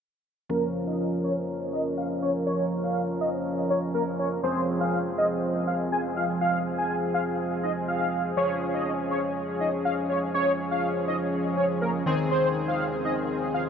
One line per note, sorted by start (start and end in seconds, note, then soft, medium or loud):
0.49 4.39 F3 medium
0.49 4.40 C#4 medium
0.49 0.68 A#4 loud
0.49 4.40 A#4 medium
0.87 1.05 D#5 medium
1.24 1.33 C#5 medium
1.73 1.82 D#5 medium
1.98 2.06 F5 medium
2.22 2.31 C#5 medium
2.47 2.64 C#5 loud
2.84 3.01 F5 medium
3.21 3.30 D#5 medium
3.70 3.79 C#5 medium
3.94 4.03 A#4 medium
4.19 4.28 C#5 medium
4.43 8.33 F3 medium
4.43 8.33 C4 medium
4.43 8.34 G#4 medium
4.43 4.61 C5 loud
4.81 4.98 F5 medium
5.18 5.27 D#5 medium
5.67 5.76 F5 medium
5.92 6.01 G#5 medium
6.17 6.25 F5 medium
6.41 6.58 F5 loud
6.78 6.95 G#5 medium
7.14 7.23 F5 medium
7.63 7.72 D#5 medium
7.88 8.23 F5 medium
8.37 12.02 F3 medium
8.37 12.02 C#4 medium
8.37 12.03 G#4 medium
8.37 8.55 C#5 loud
8.74 8.92 D#5 medium
9.11 9.20 C#5 medium
9.60 9.69 D#5 medium
9.85 9.94 F5 medium
10.10 10.18 C#5 medium
10.34 10.52 C#5 loud
10.71 10.89 F5 medium
11.08 11.17 D#5 medium
11.57 11.66 C#5 medium
11.82 11.90 A#4 medium
12.06 13.69 D#3 medium
12.06 13.69 C4 medium
12.06 13.69 G#4 medium
12.06 12.15 C5 medium
12.31 12.48 C5 loud
12.68 12.85 F5 medium
13.05 13.13 D#5 medium
13.54 13.63 F5 medium